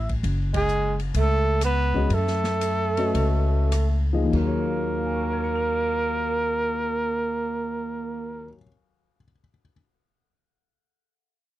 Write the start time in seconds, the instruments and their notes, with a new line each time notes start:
Already playing: upright bass A1, trumpet E5
0.09 kick, ride
0.23 upright bass F#1, ride
0.53 alto saxophone G#3, trumpet G#4, kick, ride
0.68 hi-hat pedal
0.99 ride
1.14 upright bass C#2, alto saxophone A3, ride
1.20 trumpet A4
1.61 alto saxophone B3, trumpet B4, cross-stick, hi-hat pedal, ride
1.94 grand piano G#3 C#4 F#4 B4 D#5, kick
2.10 upright bass F#2, alto saxophone A3, ride
2.14 trumpet A4
2.27 snare
2.44 snare
2.61 hi-hat pedal, ride
2.97 grand piano A3 C#4 F#4 B4 D#5, ride
3.14 upright bass C#2, ride
3.72 cross-stick, hi-hat pedal, ride
4.13 grand piano F3 A#3 D#4 G#4 D#5
4.21 grand piano D#2
4.27 grand piano D#3
4.32 upright bass D#2, grand piano F#3, alto saxophone A#3, kick, crash
4.36 grand piano F4, trumpet A#4
4.42 grand piano G#4
4.47 grand piano C#5
4.98 grand piano F5
5.06 grand piano G#5
5.14 grand piano C#6
5.23 grand piano F6
5.33 grand piano G#6
5.44 grand piano C#7
5.55 grand piano F7